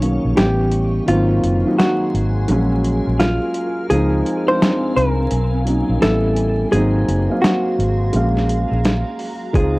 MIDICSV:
0, 0, Header, 1, 6, 480
1, 0, Start_track
1, 0, Tempo, 705882
1, 728, Time_signature, 4, 2, 24, 8
1, 6657, End_track
2, 0, Start_track
2, 0, Title_t, "Ambient pad"
2, 0, Program_c, 0, 92
2, 0, Note_on_c, 0, 85, 80
2, 708, Note_off_c, 0, 85, 0
2, 722, Note_on_c, 0, 68, 73
2, 722, Note_on_c, 0, 84, 84
2, 723, Note_on_c, 0, 80, 70
2, 1675, Note_off_c, 0, 84, 0
2, 1676, Note_off_c, 0, 68, 0
2, 1685, Note_on_c, 0, 89, 92
2, 1686, Note_on_c, 0, 70, 95
2, 2626, Note_off_c, 0, 80, 0
2, 2637, Note_off_c, 0, 70, 0
2, 2637, Note_off_c, 0, 89, 0
2, 2647, Note_on_c, 0, 80, 84
2, 2648, Note_on_c, 0, 60, 74
2, 2649, Note_on_c, 0, 77, 68
2, 3598, Note_off_c, 0, 60, 0
2, 3599, Note_off_c, 0, 77, 0
2, 4548, Note_off_c, 0, 80, 0
2, 4568, Note_on_c, 0, 66, 68
2, 4569, Note_on_c, 0, 68, 70
2, 4569, Note_on_c, 0, 84, 81
2, 5518, Note_off_c, 0, 66, 0
2, 5519, Note_off_c, 0, 68, 0
2, 5519, Note_off_c, 0, 84, 0
2, 5527, Note_on_c, 0, 77, 85
2, 5528, Note_on_c, 0, 66, 85
2, 5529, Note_on_c, 0, 82, 84
2, 6478, Note_off_c, 0, 66, 0
2, 6479, Note_off_c, 0, 82, 0
2, 6489, Note_on_c, 0, 80, 92
2, 6490, Note_on_c, 0, 60, 76
2, 6657, Note_off_c, 0, 60, 0
2, 6657, Note_off_c, 0, 77, 0
2, 6657, Note_off_c, 0, 80, 0
2, 6657, End_track
3, 0, Start_track
3, 0, Title_t, "Hollow-body jazz guitar"
3, 0, Program_c, 1, 26
3, 0, Note_on_c, 1, 68, 86
3, 251, Note_off_c, 1, 68, 0
3, 253, Note_on_c, 1, 67, 89
3, 733, Note_off_c, 1, 67, 0
3, 736, Note_on_c, 1, 65, 90
3, 1211, Note_off_c, 1, 65, 0
3, 1213, Note_on_c, 1, 66, 70
3, 1903, Note_off_c, 1, 66, 0
3, 2172, Note_on_c, 1, 65, 75
3, 2649, Note_off_c, 1, 65, 0
3, 2651, Note_on_c, 1, 68, 101
3, 3014, Note_off_c, 1, 68, 0
3, 3048, Note_on_c, 1, 72, 105
3, 3373, Note_off_c, 1, 72, 0
3, 3375, Note_on_c, 1, 70, 97
3, 3825, Note_off_c, 1, 70, 0
3, 4094, Note_on_c, 1, 69, 92
3, 4567, Note_off_c, 1, 69, 0
3, 4569, Note_on_c, 1, 68, 113
3, 5041, Note_off_c, 1, 68, 0
3, 5043, Note_on_c, 1, 66, 71
3, 5979, Note_off_c, 1, 66, 0
3, 6497, Note_on_c, 1, 68, 84
3, 6657, Note_off_c, 1, 68, 0
3, 6657, End_track
4, 0, Start_track
4, 0, Title_t, "Felt piano"
4, 0, Program_c, 2, 0
4, 0, Control_c, 2, 64, 127
4, 0, Note_on_c, 2, 51, 65
4, 6, Note_on_c, 2, 54, 62
4, 13, Note_on_c, 2, 58, 67
4, 20, Note_on_c, 2, 61, 72
4, 240, Note_on_c, 2, 52, 66
4, 244, Note_off_c, 2, 51, 0
4, 247, Note_off_c, 2, 54, 0
4, 247, Note_on_c, 2, 55, 61
4, 250, Note_off_c, 2, 58, 0
4, 253, Note_off_c, 2, 61, 0
4, 255, Note_on_c, 2, 59, 68
4, 256, Control_c, 2, 64, 0
4, 263, Note_on_c, 2, 61, 78
4, 378, Control_c, 2, 64, 127
4, 653, Note_off_c, 2, 52, 0
4, 656, Note_off_c, 2, 55, 0
4, 660, Note_off_c, 2, 59, 0
4, 664, Note_off_c, 2, 61, 0
4, 721, Note_on_c, 2, 51, 94
4, 730, Note_on_c, 2, 54, 80
4, 736, Note_on_c, 2, 58, 83
4, 737, Control_c, 2, 64, 0
4, 745, Note_on_c, 2, 60, 99
4, 850, Control_c, 2, 64, 127
4, 964, Note_off_c, 2, 51, 0
4, 968, Note_off_c, 2, 54, 0
4, 971, Note_off_c, 2, 58, 0
4, 976, Note_off_c, 2, 60, 0
4, 1117, Note_on_c, 2, 51, 83
4, 1124, Note_on_c, 2, 54, 78
4, 1131, Note_on_c, 2, 58, 82
4, 1139, Note_on_c, 2, 63, 86
4, 1676, Note_off_c, 2, 54, 0
4, 1686, Note_on_c, 2, 54, 102
4, 1687, Note_off_c, 2, 51, 0
4, 1691, Note_off_c, 2, 58, 0
4, 1694, Note_on_c, 2, 56, 93
4, 1697, Control_c, 2, 64, 0
4, 1698, Note_off_c, 2, 63, 0
4, 1701, Note_on_c, 2, 58, 78
4, 1709, Note_on_c, 2, 61, 115
4, 1810, Control_c, 2, 64, 127
4, 2467, Note_off_c, 2, 54, 0
4, 2472, Note_off_c, 2, 56, 0
4, 2475, Note_off_c, 2, 58, 0
4, 2479, Note_off_c, 2, 61, 0
4, 2651, Note_on_c, 2, 53, 93
4, 2657, Control_c, 2, 64, 0
4, 2658, Note_on_c, 2, 56, 89
4, 2666, Note_on_c, 2, 60, 83
4, 2672, Note_on_c, 2, 63, 105
4, 2762, Control_c, 2, 64, 127
4, 2888, Note_off_c, 2, 53, 0
4, 2892, Note_off_c, 2, 56, 0
4, 2896, Note_off_c, 2, 60, 0
4, 2899, Note_off_c, 2, 63, 0
4, 3039, Note_on_c, 2, 53, 70
4, 3046, Note_on_c, 2, 56, 67
4, 3053, Note_on_c, 2, 60, 70
4, 3062, Note_on_c, 2, 62, 71
4, 3083, Note_off_c, 2, 62, 0
4, 3105, Note_on_c, 2, 63, 76
4, 3576, Note_off_c, 2, 53, 0
4, 3580, Note_off_c, 2, 56, 0
4, 3583, Note_off_c, 2, 60, 0
4, 3610, Note_off_c, 2, 63, 0
4, 3618, Control_c, 2, 64, 0
4, 3747, Control_c, 2, 64, 127
4, 3843, Note_on_c, 2, 54, 72
4, 3851, Note_on_c, 2, 58, 59
4, 3858, Note_on_c, 2, 61, 62
4, 3865, Note_on_c, 2, 63, 77
4, 4084, Note_on_c, 2, 55, 81
4, 4086, Note_off_c, 2, 54, 0
4, 4089, Note_off_c, 2, 58, 0
4, 4089, Note_off_c, 2, 61, 0
4, 4091, Note_on_c, 2, 59, 71
4, 4096, Note_off_c, 2, 63, 0
4, 4096, Control_c, 2, 64, 0
4, 4100, Note_on_c, 2, 61, 61
4, 4107, Note_on_c, 2, 64, 89
4, 4204, Control_c, 2, 64, 127
4, 4495, Note_off_c, 2, 55, 0
4, 4499, Note_off_c, 2, 59, 0
4, 4503, Note_off_c, 2, 61, 0
4, 4506, Note_off_c, 2, 64, 0
4, 4563, Note_on_c, 2, 54, 94
4, 4572, Note_on_c, 2, 58, 84
4, 4578, Control_c, 2, 64, 0
4, 4580, Note_on_c, 2, 60, 90
4, 4587, Note_on_c, 2, 63, 101
4, 4690, Control_c, 2, 64, 127
4, 4805, Note_off_c, 2, 54, 0
4, 4809, Note_off_c, 2, 58, 0
4, 4813, Note_off_c, 2, 60, 0
4, 4817, Note_off_c, 2, 63, 0
4, 4951, Note_on_c, 2, 54, 73
4, 4958, Note_on_c, 2, 58, 75
4, 4967, Note_on_c, 2, 60, 66
4, 4973, Note_on_c, 2, 77, 73
4, 5524, Note_off_c, 2, 54, 0
4, 5524, Note_off_c, 2, 58, 0
4, 5527, Note_on_c, 2, 56, 84
4, 5532, Note_off_c, 2, 60, 0
4, 5534, Note_on_c, 2, 58, 71
4, 5535, Note_off_c, 2, 77, 0
4, 5535, Control_c, 2, 64, 0
4, 5543, Note_on_c, 2, 61, 72
4, 5550, Note_on_c, 2, 77, 90
4, 5660, Control_c, 2, 64, 127
4, 6308, Note_off_c, 2, 56, 0
4, 6312, Note_off_c, 2, 58, 0
4, 6316, Note_off_c, 2, 61, 0
4, 6320, Note_off_c, 2, 77, 0
4, 6482, Note_on_c, 2, 56, 90
4, 6491, Note_on_c, 2, 60, 81
4, 6497, Note_on_c, 2, 63, 83
4, 6498, Control_c, 2, 64, 0
4, 6505, Note_on_c, 2, 65, 103
4, 6617, Control_c, 2, 64, 127
4, 6657, Note_off_c, 2, 56, 0
4, 6657, Note_off_c, 2, 60, 0
4, 6657, Note_off_c, 2, 63, 0
4, 6657, Note_off_c, 2, 65, 0
4, 6657, End_track
5, 0, Start_track
5, 0, Title_t, "Fingered electric bass"
5, 0, Program_c, 3, 33
5, 0, Note_on_c, 3, 35, 107
5, 117, Note_off_c, 3, 35, 0
5, 168, Note_on_c, 3, 34, 78
5, 242, Note_off_c, 3, 34, 0
5, 257, Note_on_c, 3, 33, 96
5, 675, Note_off_c, 3, 33, 0
5, 737, Note_on_c, 3, 32, 107
5, 944, Note_off_c, 3, 32, 0
5, 975, Note_on_c, 3, 30, 94
5, 1105, Note_off_c, 3, 30, 0
5, 1457, Note_on_c, 3, 32, 82
5, 1664, Note_off_c, 3, 32, 0
5, 1696, Note_on_c, 3, 34, 114
5, 2036, Note_off_c, 3, 34, 0
5, 2088, Note_on_c, 3, 34, 75
5, 2295, Note_off_c, 3, 34, 0
5, 2656, Note_on_c, 3, 37, 90
5, 2864, Note_off_c, 3, 37, 0
5, 3377, Note_on_c, 3, 36, 80
5, 3584, Note_off_c, 3, 36, 0
5, 3615, Note_on_c, 3, 35, 100
5, 3956, Note_off_c, 3, 35, 0
5, 4007, Note_on_c, 3, 34, 73
5, 4082, Note_off_c, 3, 34, 0
5, 4098, Note_on_c, 3, 33, 91
5, 4516, Note_off_c, 3, 33, 0
5, 4576, Note_on_c, 3, 32, 103
5, 4783, Note_off_c, 3, 32, 0
5, 4815, Note_on_c, 3, 30, 100
5, 4945, Note_off_c, 3, 30, 0
5, 5295, Note_on_c, 3, 32, 80
5, 5503, Note_off_c, 3, 32, 0
5, 5535, Note_on_c, 3, 34, 104
5, 5876, Note_off_c, 3, 34, 0
5, 5926, Note_on_c, 3, 34, 77
5, 6134, Note_off_c, 3, 34, 0
5, 6493, Note_on_c, 3, 37, 95
5, 6657, Note_off_c, 3, 37, 0
5, 6657, End_track
6, 0, Start_track
6, 0, Title_t, "Drums"
6, 14, Note_on_c, 9, 42, 68
6, 82, Note_off_c, 9, 42, 0
6, 252, Note_on_c, 9, 42, 77
6, 257, Note_on_c, 9, 38, 105
6, 320, Note_off_c, 9, 42, 0
6, 325, Note_off_c, 9, 38, 0
6, 486, Note_on_c, 9, 42, 60
6, 554, Note_off_c, 9, 42, 0
6, 733, Note_on_c, 9, 42, 94
6, 801, Note_off_c, 9, 42, 0
6, 976, Note_on_c, 9, 42, 68
6, 1044, Note_off_c, 9, 42, 0
6, 1221, Note_on_c, 9, 38, 104
6, 1222, Note_on_c, 9, 42, 84
6, 1289, Note_off_c, 9, 38, 0
6, 1290, Note_off_c, 9, 42, 0
6, 1461, Note_on_c, 9, 42, 60
6, 1529, Note_off_c, 9, 42, 0
6, 1687, Note_on_c, 9, 42, 88
6, 1755, Note_off_c, 9, 42, 0
6, 1934, Note_on_c, 9, 42, 62
6, 2002, Note_off_c, 9, 42, 0
6, 2174, Note_on_c, 9, 42, 83
6, 2179, Note_on_c, 9, 38, 96
6, 2242, Note_off_c, 9, 42, 0
6, 2247, Note_off_c, 9, 38, 0
6, 2408, Note_on_c, 9, 42, 61
6, 2476, Note_off_c, 9, 42, 0
6, 2655, Note_on_c, 9, 42, 94
6, 2723, Note_off_c, 9, 42, 0
6, 2899, Note_on_c, 9, 42, 61
6, 2967, Note_off_c, 9, 42, 0
6, 3143, Note_on_c, 9, 38, 113
6, 3144, Note_on_c, 9, 42, 89
6, 3211, Note_off_c, 9, 38, 0
6, 3212, Note_off_c, 9, 42, 0
6, 3383, Note_on_c, 9, 42, 64
6, 3451, Note_off_c, 9, 42, 0
6, 3609, Note_on_c, 9, 42, 83
6, 3677, Note_off_c, 9, 42, 0
6, 3854, Note_on_c, 9, 42, 70
6, 3922, Note_off_c, 9, 42, 0
6, 4094, Note_on_c, 9, 42, 78
6, 4099, Note_on_c, 9, 38, 108
6, 4162, Note_off_c, 9, 42, 0
6, 4167, Note_off_c, 9, 38, 0
6, 4328, Note_on_c, 9, 42, 65
6, 4396, Note_off_c, 9, 42, 0
6, 4574, Note_on_c, 9, 42, 90
6, 4642, Note_off_c, 9, 42, 0
6, 4818, Note_on_c, 9, 42, 65
6, 4886, Note_off_c, 9, 42, 0
6, 5061, Note_on_c, 9, 38, 106
6, 5062, Note_on_c, 9, 42, 92
6, 5129, Note_off_c, 9, 38, 0
6, 5130, Note_off_c, 9, 42, 0
6, 5303, Note_on_c, 9, 42, 64
6, 5371, Note_off_c, 9, 42, 0
6, 5528, Note_on_c, 9, 42, 90
6, 5596, Note_off_c, 9, 42, 0
6, 5691, Note_on_c, 9, 38, 42
6, 5759, Note_off_c, 9, 38, 0
6, 5775, Note_on_c, 9, 42, 64
6, 5843, Note_off_c, 9, 42, 0
6, 6015, Note_on_c, 9, 42, 82
6, 6020, Note_on_c, 9, 38, 104
6, 6083, Note_off_c, 9, 42, 0
6, 6088, Note_off_c, 9, 38, 0
6, 6249, Note_on_c, 9, 46, 43
6, 6317, Note_off_c, 9, 46, 0
6, 6489, Note_on_c, 9, 36, 127
6, 6495, Note_on_c, 9, 42, 98
6, 6557, Note_off_c, 9, 36, 0
6, 6563, Note_off_c, 9, 42, 0
6, 6657, End_track
0, 0, End_of_file